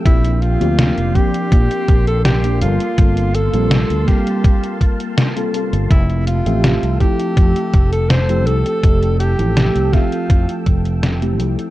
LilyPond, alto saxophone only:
\new Staff \with { instrumentName = "Alto saxophone" } { \time 4/4 \key g \dorian \tempo 4 = 82 e'8 f'4 g'4~ g'16 a'16 g'8 f'8~ | f'8 a'4 g'4 r4. | e'8 f'4 g'4~ g'16 a'16 c''8 a'8~ | a'8 g'4 f'4 r4. | }